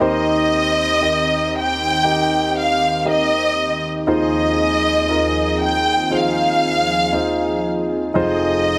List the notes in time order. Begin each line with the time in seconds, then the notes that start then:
Already playing: D#3 C4
0.00 D#2 D#3 D#4 G4 A#4 C5
0.04 D#5
1.01 D#4 G4 A#4 D#5
1.58 G5
2.04 D#4 G4 A#4 D#5
2.59 F5
3.05 D#4 G4 A#4 D#5
3.11 D#5
4.07 D#2 D#3 F3 C4 D#4 F4 G#4 C5
4.11 D#5
5.09 D#4 F4 G#4 A#4
5.64 G5
6.10 D#4 F4 G#4 C5
6.15 F5
7.13 D#4 F4 G#4 C5
8.14 F1 F2 D#4 F4 G#4 C5
8.20 D#5